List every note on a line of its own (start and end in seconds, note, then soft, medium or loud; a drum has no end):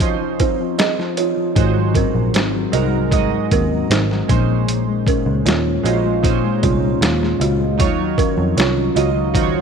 0.00 0.40 C2 medium
0.00 0.19 F3 medium
0.00 1.58 F3 medium
0.00 0.39 C4 medium
0.00 1.58 C#4 medium
0.00 1.17 D#4 medium
0.00 1.56 D#4 medium
0.00 0.02 C5 medium
0.00 1.05 C5 medium
0.00 kick medium
0.00 closed hi-hat medium
0.20 0.58 F3 soft
0.40 1.53 D#2 medium
0.40 0.79 C4 medium
0.40 0.59 D#4 medium
0.40 0.58 C5 medium
0.40 kick medium
0.40 closed hi-hat medium
0.59 0.97 F3 medium
0.78 1.79 C4 medium
0.78 0.97 G#4 medium
0.78 0.97 D#5 medium
0.78 snare loud
0.78 closed hi-hat medium
0.98 1.35 F3 medium
0.98 snare soft
1.17 2.73 D#4 medium
1.17 1.37 F4 medium
1.17 1.36 C#5 medium
1.17 closed hi-hat medium
1.37 1.64 F3 soft
1.55 2.03 G#1 medium
1.55 3.11 G#2 medium
1.55 2.34 G#3 medium
1.55 2.34 D#4 medium
1.55 2.35 F#4 medium
1.55 2.35 C5 medium
1.55 kick loud
1.55 closed hi-hat medium
1.76 2.13 F#3 medium
1.95 2.34 C4 medium
1.95 2.15 C#4 soft
1.95 2.14 A#4 medium
1.95 kick medium
1.95 closed hi-hat medium
2.15 2.34 A#1 medium
2.15 2.53 F#3 medium
2.34 2.65 G#1 medium
2.34 3.52 C4 medium
2.34 2.72 D#4 medium
2.34 2.72 C5 medium
2.34 snare loud
2.34 closed hi-hat medium
2.54 2.91 F#3 medium
2.72 3.36 C2 medium
2.72 2.99 G#3 medium
2.72 2.99 D#4 medium
2.72 5.11 D#4 medium
2.72 3.00 F#4 medium
2.72 2.92 F#4 medium
2.72 3.00 A#4 medium
2.72 2.92 D#5 medium
2.72 closed hi-hat medium
2.92 3.31 F#3 medium
3.11 4.29 G#2 medium
3.11 4.16 G#3 medium
3.11 4.16 D#4 medium
3.11 4.17 F#4 medium
3.11 4.17 D#5 medium
3.11 kick medium
3.11 closed hi-hat medium
3.32 3.70 F#3 soft
3.51 3.83 D#2 medium
3.51 3.91 C4 medium
3.51 3.70 C#4 medium
3.51 3.70 A#4 medium
3.51 kick medium
3.51 closed hi-hat medium
3.71 4.09 F#3 medium
3.90 4.21 G#1 medium
3.90 4.71 C4 medium
3.90 4.46 D#4 medium
3.90 4.45 C5 medium
3.90 snare loud
3.90 closed hi-hat medium
4.10 4.37 F#3 medium
4.10 snare soft
4.28 5.07 A#1 medium
4.28 4.67 A#2 medium
4.28 5.53 G#3 medium
4.28 5.54 C#4 medium
4.28 5.54 D#4 medium
4.28 5.54 C5 medium
4.28 kick medium
4.28 closed hi-hat medium
4.49 4.87 G#3 medium
4.68 6.24 A#2 medium
4.68 closed hi-hat medium
4.88 5.25 G#3 medium
5.07 5.46 C#4 medium
5.07 5.26 C#4 soft
5.07 5.26 A#4 medium
5.07 kick medium
5.07 closed hi-hat medium
5.26 5.42 C#2 medium
5.26 5.64 G#3 medium
5.46 5.77 D#2 medium
5.46 6.63 C#4 medium
5.46 5.83 F4 medium
5.46 5.83 C#5 medium
5.46 snare loud
5.46 closed hi-hat medium
5.66 6.04 G#3 medium
5.83 6.47 A#1 medium
5.83 6.10 G#3 medium
5.83 6.11 C#4 medium
5.83 6.11 D#4 medium
5.83 7.41 F4 medium
5.83 6.04 F#4 medium
5.83 6.11 C5 medium
5.83 6.04 D#5 medium
5.83 closed hi-hat medium
6.05 6.43 G#3 medium
6.23 7.88 A#2 medium
6.23 7.28 G#3 medium
6.23 6.30 C4 medium
6.23 7.28 D#4 medium
6.23 7.29 C5 medium
6.23 kick medium
6.23 closed hi-hat medium
6.30 7.31 C#4 medium
6.44 6.82 G#3 medium
6.63 6.94 C2 medium
6.63 7.03 C#4 medium
6.63 6.82 F4 medium
6.63 6.81 C#5 medium
6.63 kick medium
6.63 closed hi-hat medium
6.83 7.21 G#3 medium
7.01 7.33 D#2 medium
7.01 8.18 C#4 medium
7.01 7.21 G#4 medium
7.01 7.20 F5 medium
7.01 snare loud
7.01 closed hi-hat medium
7.22 7.59 G#3 medium
7.22 snare soft
7.40 7.80 C#2 medium
7.40 8.02 F4 medium
7.40 7.60 F#4 medium
7.40 7.60 D#5 medium
7.40 closed hi-hat medium
7.61 7.88 G#3 medium
7.78 8.26 D#2 loud
7.78 9.35 D#3 medium
7.78 8.57 F#3 medium
7.78 8.57 D#4 medium
7.78 8.58 F4 medium
7.78 8.58 C#5 medium
7.78 kick loud
7.78 closed hi-hat medium
7.99 8.37 F#3 medium
8.18 8.57 C#4 medium
8.18 8.37 C#4 soft
8.18 8.37 A#4 medium
8.18 kick medium
8.18 closed hi-hat medium
8.38 8.53 F2 medium
8.38 8.76 F#3 medium
8.57 8.88 C2 medium
8.57 9.61 C#4 medium
8.57 8.95 F4 soft
8.57 8.95 C#5 medium
8.57 snare loud
8.57 closed hi-hat medium
8.77 9.14 F#3 soft
8.95 9.58 C#2 medium
8.95 9.22 F#3 medium
8.95 9.23 D#4 medium
8.95 9.61 F4 medium
8.95 9.23 F4 medium
8.95 9.15 F#4 medium
8.95 9.15 D#5 medium
8.95 9.23 D#5 medium
8.95 closed hi-hat medium
9.16 9.54 F#3 medium
9.34 9.61 D#3 medium
9.34 9.61 D#4 medium
9.34 9.61 F4 medium
9.34 9.61 F#4 medium
9.34 9.42 C5 medium
9.34 kick medium
9.34 closed hi-hat medium
9.42 9.61 C#5 medium
9.55 9.61 F#3 medium